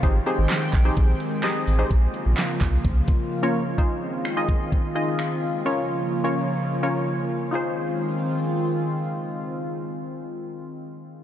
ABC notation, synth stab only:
X:1
M:4/4
L:1/16
Q:1/4=128
K:Fm
V:1 name="Synth stab"
[CEGAc] z [CEGAc]3 z2 [CEGAc]3 z2 [CEGAe]2 z [CEGAc] | z12 z [B,DFBd]2 z | [EFAc]3 z2 [EFAe]3 z2 [EFAe]3 z3 | [DFBd]3 z2 [DFBd]3 z2 [DFBd]3 z3 |
[EFAc]16- | [EFAc]16 |]